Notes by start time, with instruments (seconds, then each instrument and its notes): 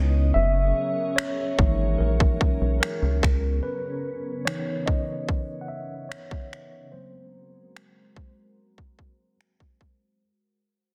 Already playing: analog synth bass C#2, ambient pad C#3 B3 C#4 D#5, tine electric piano B3 D#4 E4 D#5
0.34 analog synth bass F#1, ambient pad F#3 G#4 A#4 C#5, tine electric piano E5
1.16 tine electric piano C#5, finger snap
1.58 analog synth bass G#1, tine electric piano E3 G#3 A#3 D#4, kick
1.98 analog synth bass A#1, tine electric piano A#4
2.20 kick
2.41 kick
2.61 analog synth bass B1
2.80 tine electric piano A#4, finger snap
3.02 analog synth bass C#2
3.23 analog synth bass C#2, ambient pad C#3 B3, finger snap, kick
3.63 tine electric piano B4
4.45 tine electric piano E3 B3 D#4 C#5, finger snap
4.86 tine electric piano D#5, kick
5.29 kick
5.61 tine electric piano F#5
5.68 tine electric piano E5
6.09 tine electric piano C#5, finger snap
6.31 kick
6.53 finger snap
6.92 tine electric piano F#3 A#3 C4 C5, ambient pad G#3 F#4 A#4 C5
7.76 finger snap
8.16 kick
8.78 kick
8.99 kick
9.41 finger snap
9.60 kick
9.81 kick